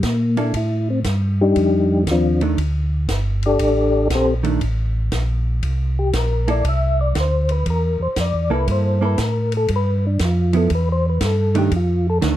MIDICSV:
0, 0, Header, 1, 5, 480
1, 0, Start_track
1, 0, Tempo, 508044
1, 1472, Time_signature, 4, 2, 24, 8
1, 11684, End_track
2, 0, Start_track
2, 0, Title_t, "Tonewheel organ"
2, 0, Program_c, 0, 16
2, 56, Note_on_c, 0, 58, 60
2, 356, Note_off_c, 0, 58, 0
2, 356, Note_on_c, 0, 62, 91
2, 508, Note_off_c, 0, 62, 0
2, 536, Note_on_c, 0, 64, 79
2, 836, Note_off_c, 0, 64, 0
2, 854, Note_on_c, 0, 60, 88
2, 943, Note_off_c, 0, 60, 0
2, 1335, Note_on_c, 0, 55, 67
2, 1335, Note_on_c, 0, 67, 92
2, 1341, Note_on_c, 0, 62, 72
2, 1342, Note_on_c, 0, 63, 64
2, 1925, Note_off_c, 0, 67, 0
2, 1926, Note_off_c, 0, 55, 0
2, 1929, Note_off_c, 0, 62, 0
2, 1929, Note_off_c, 0, 63, 0
2, 1995, Note_on_c, 0, 65, 72
2, 1996, Note_on_c, 0, 62, 54
2, 2000, Note_on_c, 0, 53, 60
2, 2002, Note_on_c, 0, 60, 53
2, 2287, Note_off_c, 0, 65, 0
2, 2288, Note_off_c, 0, 62, 0
2, 2290, Note_off_c, 0, 53, 0
2, 2291, Note_off_c, 0, 60, 0
2, 3267, Note_on_c, 0, 74, 92
2, 3268, Note_on_c, 0, 67, 86
2, 3270, Note_on_c, 0, 62, 83
2, 3275, Note_on_c, 0, 69, 77
2, 3853, Note_off_c, 0, 67, 0
2, 3853, Note_off_c, 0, 74, 0
2, 3854, Note_off_c, 0, 62, 0
2, 3856, Note_off_c, 0, 69, 0
2, 3919, Note_on_c, 0, 72, 82
2, 3920, Note_on_c, 0, 60, 64
2, 3920, Note_on_c, 0, 69, 63
2, 3923, Note_on_c, 0, 67, 60
2, 4099, Note_off_c, 0, 72, 0
2, 4100, Note_off_c, 0, 60, 0
2, 4100, Note_off_c, 0, 69, 0
2, 4102, Note_off_c, 0, 67, 0
2, 5659, Note_on_c, 0, 67, 84
2, 5802, Note_off_c, 0, 67, 0
2, 5839, Note_on_c, 0, 70, 79
2, 6130, Note_off_c, 0, 70, 0
2, 6141, Note_on_c, 0, 74, 97
2, 6283, Note_off_c, 0, 74, 0
2, 6316, Note_on_c, 0, 76, 97
2, 6608, Note_off_c, 0, 76, 0
2, 6621, Note_on_c, 0, 74, 104
2, 6763, Note_off_c, 0, 74, 0
2, 6804, Note_on_c, 0, 72, 88
2, 7093, Note_off_c, 0, 72, 0
2, 7103, Note_on_c, 0, 71, 93
2, 7244, Note_off_c, 0, 71, 0
2, 7277, Note_on_c, 0, 70, 89
2, 7569, Note_off_c, 0, 70, 0
2, 7581, Note_on_c, 0, 72, 100
2, 7723, Note_off_c, 0, 72, 0
2, 7753, Note_on_c, 0, 74, 92
2, 8046, Note_off_c, 0, 74, 0
2, 8056, Note_on_c, 0, 71, 89
2, 8199, Note_off_c, 0, 71, 0
2, 8235, Note_on_c, 0, 72, 88
2, 8527, Note_off_c, 0, 72, 0
2, 8551, Note_on_c, 0, 71, 99
2, 8687, Note_off_c, 0, 71, 0
2, 8724, Note_on_c, 0, 70, 88
2, 9011, Note_off_c, 0, 70, 0
2, 9042, Note_on_c, 0, 69, 91
2, 9172, Note_off_c, 0, 69, 0
2, 9220, Note_on_c, 0, 71, 94
2, 9499, Note_off_c, 0, 71, 0
2, 9512, Note_on_c, 0, 62, 65
2, 9646, Note_off_c, 0, 62, 0
2, 9684, Note_on_c, 0, 65, 69
2, 9970, Note_off_c, 0, 65, 0
2, 9984, Note_on_c, 0, 69, 99
2, 10122, Note_off_c, 0, 69, 0
2, 10156, Note_on_c, 0, 71, 85
2, 10288, Note_off_c, 0, 71, 0
2, 10321, Note_on_c, 0, 72, 92
2, 10451, Note_off_c, 0, 72, 0
2, 10482, Note_on_c, 0, 71, 86
2, 10612, Note_off_c, 0, 71, 0
2, 10631, Note_on_c, 0, 69, 78
2, 10922, Note_off_c, 0, 69, 0
2, 10944, Note_on_c, 0, 67, 88
2, 11081, Note_off_c, 0, 67, 0
2, 11114, Note_on_c, 0, 65, 83
2, 11403, Note_off_c, 0, 65, 0
2, 11429, Note_on_c, 0, 69, 98
2, 11512, Note_off_c, 0, 69, 0
2, 11684, End_track
3, 0, Start_track
3, 0, Title_t, "Hollow-body jazz guitar"
3, 0, Program_c, 1, 26
3, 351, Note_on_c, 1, 58, 57
3, 353, Note_on_c, 1, 64, 66
3, 361, Note_on_c, 1, 69, 67
3, 495, Note_off_c, 1, 58, 0
3, 495, Note_off_c, 1, 64, 0
3, 499, Note_off_c, 1, 69, 0
3, 2282, Note_on_c, 1, 51, 56
3, 2291, Note_on_c, 1, 57, 58
3, 2292, Note_on_c, 1, 62, 61
3, 2421, Note_off_c, 1, 51, 0
3, 2425, Note_off_c, 1, 57, 0
3, 2426, Note_off_c, 1, 62, 0
3, 4188, Note_on_c, 1, 51, 66
3, 4194, Note_on_c, 1, 57, 67
3, 4201, Note_on_c, 1, 62, 71
3, 4335, Note_off_c, 1, 51, 0
3, 4338, Note_off_c, 1, 57, 0
3, 4342, Note_off_c, 1, 62, 0
3, 6120, Note_on_c, 1, 58, 59
3, 6123, Note_on_c, 1, 64, 67
3, 6129, Note_on_c, 1, 69, 63
3, 6261, Note_off_c, 1, 58, 0
3, 6263, Note_off_c, 1, 64, 0
3, 6265, Note_off_c, 1, 69, 0
3, 8033, Note_on_c, 1, 58, 59
3, 8038, Note_on_c, 1, 64, 65
3, 8041, Note_on_c, 1, 69, 70
3, 8482, Note_off_c, 1, 58, 0
3, 8484, Note_off_c, 1, 64, 0
3, 8486, Note_off_c, 1, 69, 0
3, 8514, Note_on_c, 1, 58, 61
3, 8520, Note_on_c, 1, 64, 68
3, 8525, Note_on_c, 1, 69, 72
3, 8657, Note_off_c, 1, 58, 0
3, 8660, Note_off_c, 1, 64, 0
3, 8662, Note_off_c, 1, 69, 0
3, 9951, Note_on_c, 1, 53, 62
3, 9960, Note_on_c, 1, 59, 63
3, 9962, Note_on_c, 1, 64, 66
3, 10094, Note_off_c, 1, 53, 0
3, 10098, Note_off_c, 1, 59, 0
3, 10099, Note_off_c, 1, 64, 0
3, 10911, Note_on_c, 1, 51, 71
3, 10915, Note_on_c, 1, 57, 66
3, 10922, Note_on_c, 1, 62, 74
3, 11052, Note_off_c, 1, 51, 0
3, 11055, Note_off_c, 1, 57, 0
3, 11058, Note_off_c, 1, 62, 0
3, 11541, Note_on_c, 1, 51, 49
3, 11548, Note_on_c, 1, 57, 53
3, 11552, Note_on_c, 1, 62, 57
3, 11684, Note_off_c, 1, 51, 0
3, 11684, Note_off_c, 1, 57, 0
3, 11684, Note_off_c, 1, 62, 0
3, 11684, End_track
4, 0, Start_track
4, 0, Title_t, "Tonewheel organ"
4, 0, Program_c, 2, 16
4, 28, Note_on_c, 2, 46, 79
4, 495, Note_off_c, 2, 46, 0
4, 508, Note_on_c, 2, 45, 77
4, 976, Note_off_c, 2, 45, 0
4, 988, Note_on_c, 2, 43, 84
4, 1456, Note_off_c, 2, 43, 0
4, 1473, Note_on_c, 2, 41, 74
4, 1939, Note_off_c, 2, 41, 0
4, 1952, Note_on_c, 2, 39, 88
4, 2419, Note_off_c, 2, 39, 0
4, 2436, Note_on_c, 2, 38, 91
4, 2901, Note_off_c, 2, 38, 0
4, 2914, Note_on_c, 2, 31, 84
4, 3380, Note_off_c, 2, 31, 0
4, 3396, Note_on_c, 2, 33, 79
4, 3861, Note_off_c, 2, 33, 0
4, 3874, Note_on_c, 2, 34, 73
4, 4340, Note_off_c, 2, 34, 0
4, 4355, Note_on_c, 2, 33, 86
4, 4821, Note_off_c, 2, 33, 0
4, 4834, Note_on_c, 2, 34, 87
4, 5301, Note_off_c, 2, 34, 0
4, 5317, Note_on_c, 2, 36, 78
4, 5782, Note_off_c, 2, 36, 0
4, 5792, Note_on_c, 2, 34, 82
4, 6259, Note_off_c, 2, 34, 0
4, 6276, Note_on_c, 2, 36, 88
4, 6741, Note_off_c, 2, 36, 0
4, 6758, Note_on_c, 2, 38, 89
4, 7222, Note_off_c, 2, 38, 0
4, 7233, Note_on_c, 2, 40, 74
4, 7533, Note_off_c, 2, 40, 0
4, 7554, Note_on_c, 2, 40, 36
4, 7634, Note_off_c, 2, 40, 0
4, 7714, Note_on_c, 2, 41, 77
4, 7870, Note_off_c, 2, 41, 0
4, 7878, Note_on_c, 2, 40, 53
4, 8035, Note_on_c, 2, 36, 67
4, 8036, Note_off_c, 2, 40, 0
4, 8183, Note_off_c, 2, 36, 0
4, 8193, Note_on_c, 2, 43, 82
4, 8658, Note_off_c, 2, 43, 0
4, 8671, Note_on_c, 2, 45, 84
4, 9137, Note_off_c, 2, 45, 0
4, 9152, Note_on_c, 2, 43, 80
4, 9617, Note_off_c, 2, 43, 0
4, 9631, Note_on_c, 2, 41, 90
4, 10096, Note_off_c, 2, 41, 0
4, 10111, Note_on_c, 2, 40, 84
4, 10575, Note_off_c, 2, 40, 0
4, 10588, Note_on_c, 2, 43, 85
4, 11053, Note_off_c, 2, 43, 0
4, 11069, Note_on_c, 2, 41, 76
4, 11532, Note_off_c, 2, 41, 0
4, 11546, Note_on_c, 2, 38, 81
4, 11684, Note_off_c, 2, 38, 0
4, 11684, End_track
5, 0, Start_track
5, 0, Title_t, "Drums"
5, 27, Note_on_c, 9, 44, 47
5, 27, Note_on_c, 9, 51, 61
5, 29, Note_on_c, 9, 38, 61
5, 30, Note_on_c, 9, 36, 21
5, 122, Note_off_c, 9, 44, 0
5, 122, Note_off_c, 9, 51, 0
5, 124, Note_off_c, 9, 36, 0
5, 124, Note_off_c, 9, 38, 0
5, 350, Note_on_c, 9, 51, 44
5, 444, Note_off_c, 9, 51, 0
5, 508, Note_on_c, 9, 51, 64
5, 509, Note_on_c, 9, 36, 19
5, 602, Note_off_c, 9, 51, 0
5, 604, Note_off_c, 9, 36, 0
5, 986, Note_on_c, 9, 44, 53
5, 986, Note_on_c, 9, 51, 58
5, 988, Note_on_c, 9, 38, 55
5, 990, Note_on_c, 9, 36, 23
5, 1080, Note_off_c, 9, 44, 0
5, 1080, Note_off_c, 9, 51, 0
5, 1082, Note_off_c, 9, 38, 0
5, 1085, Note_off_c, 9, 36, 0
5, 1471, Note_on_c, 9, 51, 57
5, 1472, Note_on_c, 9, 36, 21
5, 1566, Note_off_c, 9, 36, 0
5, 1566, Note_off_c, 9, 51, 0
5, 1954, Note_on_c, 9, 36, 23
5, 1954, Note_on_c, 9, 44, 52
5, 1954, Note_on_c, 9, 51, 66
5, 1956, Note_on_c, 9, 38, 58
5, 2048, Note_off_c, 9, 36, 0
5, 2049, Note_off_c, 9, 44, 0
5, 2049, Note_off_c, 9, 51, 0
5, 2051, Note_off_c, 9, 38, 0
5, 2277, Note_on_c, 9, 51, 45
5, 2372, Note_off_c, 9, 51, 0
5, 2435, Note_on_c, 9, 36, 19
5, 2438, Note_on_c, 9, 51, 59
5, 2529, Note_off_c, 9, 36, 0
5, 2533, Note_off_c, 9, 51, 0
5, 2915, Note_on_c, 9, 36, 23
5, 2915, Note_on_c, 9, 44, 59
5, 2915, Note_on_c, 9, 51, 65
5, 2917, Note_on_c, 9, 38, 67
5, 3009, Note_off_c, 9, 36, 0
5, 3009, Note_off_c, 9, 44, 0
5, 3009, Note_off_c, 9, 51, 0
5, 3011, Note_off_c, 9, 38, 0
5, 3237, Note_on_c, 9, 51, 48
5, 3331, Note_off_c, 9, 51, 0
5, 3394, Note_on_c, 9, 51, 71
5, 3395, Note_on_c, 9, 36, 22
5, 3488, Note_off_c, 9, 51, 0
5, 3490, Note_off_c, 9, 36, 0
5, 3875, Note_on_c, 9, 36, 22
5, 3876, Note_on_c, 9, 44, 59
5, 3876, Note_on_c, 9, 51, 69
5, 3878, Note_on_c, 9, 38, 61
5, 3970, Note_off_c, 9, 36, 0
5, 3971, Note_off_c, 9, 44, 0
5, 3971, Note_off_c, 9, 51, 0
5, 3973, Note_off_c, 9, 38, 0
5, 4199, Note_on_c, 9, 51, 47
5, 4293, Note_off_c, 9, 51, 0
5, 4355, Note_on_c, 9, 51, 61
5, 4357, Note_on_c, 9, 36, 26
5, 4450, Note_off_c, 9, 51, 0
5, 4451, Note_off_c, 9, 36, 0
5, 4834, Note_on_c, 9, 44, 54
5, 4834, Note_on_c, 9, 51, 61
5, 4836, Note_on_c, 9, 36, 21
5, 4836, Note_on_c, 9, 38, 65
5, 4929, Note_off_c, 9, 44, 0
5, 4929, Note_off_c, 9, 51, 0
5, 4930, Note_off_c, 9, 38, 0
5, 4931, Note_off_c, 9, 36, 0
5, 5316, Note_on_c, 9, 51, 61
5, 5317, Note_on_c, 9, 36, 20
5, 5410, Note_off_c, 9, 51, 0
5, 5411, Note_off_c, 9, 36, 0
5, 5795, Note_on_c, 9, 44, 56
5, 5795, Note_on_c, 9, 51, 67
5, 5797, Note_on_c, 9, 36, 19
5, 5797, Note_on_c, 9, 38, 65
5, 5889, Note_off_c, 9, 44, 0
5, 5889, Note_off_c, 9, 51, 0
5, 5891, Note_off_c, 9, 36, 0
5, 5891, Note_off_c, 9, 38, 0
5, 6121, Note_on_c, 9, 51, 45
5, 6215, Note_off_c, 9, 51, 0
5, 6278, Note_on_c, 9, 36, 19
5, 6279, Note_on_c, 9, 51, 63
5, 6373, Note_off_c, 9, 36, 0
5, 6374, Note_off_c, 9, 51, 0
5, 6757, Note_on_c, 9, 36, 19
5, 6757, Note_on_c, 9, 44, 46
5, 6757, Note_on_c, 9, 51, 58
5, 6758, Note_on_c, 9, 38, 62
5, 6851, Note_off_c, 9, 44, 0
5, 6851, Note_off_c, 9, 51, 0
5, 6852, Note_off_c, 9, 36, 0
5, 6853, Note_off_c, 9, 38, 0
5, 7074, Note_on_c, 9, 51, 48
5, 7169, Note_off_c, 9, 51, 0
5, 7235, Note_on_c, 9, 51, 63
5, 7237, Note_on_c, 9, 36, 29
5, 7330, Note_off_c, 9, 51, 0
5, 7332, Note_off_c, 9, 36, 0
5, 7712, Note_on_c, 9, 44, 56
5, 7712, Note_on_c, 9, 51, 66
5, 7713, Note_on_c, 9, 38, 59
5, 7716, Note_on_c, 9, 36, 25
5, 7806, Note_off_c, 9, 44, 0
5, 7806, Note_off_c, 9, 51, 0
5, 7808, Note_off_c, 9, 38, 0
5, 7811, Note_off_c, 9, 36, 0
5, 8196, Note_on_c, 9, 51, 62
5, 8197, Note_on_c, 9, 36, 27
5, 8291, Note_off_c, 9, 36, 0
5, 8291, Note_off_c, 9, 51, 0
5, 8671, Note_on_c, 9, 44, 59
5, 8671, Note_on_c, 9, 51, 61
5, 8673, Note_on_c, 9, 38, 66
5, 8675, Note_on_c, 9, 36, 19
5, 8766, Note_off_c, 9, 44, 0
5, 8766, Note_off_c, 9, 51, 0
5, 8767, Note_off_c, 9, 38, 0
5, 8769, Note_off_c, 9, 36, 0
5, 8993, Note_on_c, 9, 51, 48
5, 9088, Note_off_c, 9, 51, 0
5, 9149, Note_on_c, 9, 51, 62
5, 9154, Note_on_c, 9, 36, 21
5, 9243, Note_off_c, 9, 51, 0
5, 9248, Note_off_c, 9, 36, 0
5, 9630, Note_on_c, 9, 44, 57
5, 9630, Note_on_c, 9, 51, 65
5, 9632, Note_on_c, 9, 36, 21
5, 9632, Note_on_c, 9, 38, 62
5, 9724, Note_off_c, 9, 44, 0
5, 9724, Note_off_c, 9, 51, 0
5, 9726, Note_off_c, 9, 38, 0
5, 9727, Note_off_c, 9, 36, 0
5, 9950, Note_on_c, 9, 51, 51
5, 10044, Note_off_c, 9, 51, 0
5, 10108, Note_on_c, 9, 51, 56
5, 10112, Note_on_c, 9, 36, 23
5, 10203, Note_off_c, 9, 51, 0
5, 10206, Note_off_c, 9, 36, 0
5, 10588, Note_on_c, 9, 44, 59
5, 10588, Note_on_c, 9, 51, 72
5, 10590, Note_on_c, 9, 38, 71
5, 10591, Note_on_c, 9, 36, 21
5, 10682, Note_off_c, 9, 44, 0
5, 10682, Note_off_c, 9, 51, 0
5, 10684, Note_off_c, 9, 38, 0
5, 10685, Note_off_c, 9, 36, 0
5, 10911, Note_on_c, 9, 51, 50
5, 11006, Note_off_c, 9, 51, 0
5, 11068, Note_on_c, 9, 51, 60
5, 11070, Note_on_c, 9, 36, 22
5, 11163, Note_off_c, 9, 51, 0
5, 11164, Note_off_c, 9, 36, 0
5, 11546, Note_on_c, 9, 44, 49
5, 11546, Note_on_c, 9, 51, 63
5, 11548, Note_on_c, 9, 36, 19
5, 11548, Note_on_c, 9, 38, 68
5, 11640, Note_off_c, 9, 44, 0
5, 11640, Note_off_c, 9, 51, 0
5, 11642, Note_off_c, 9, 36, 0
5, 11642, Note_off_c, 9, 38, 0
5, 11684, End_track
0, 0, End_of_file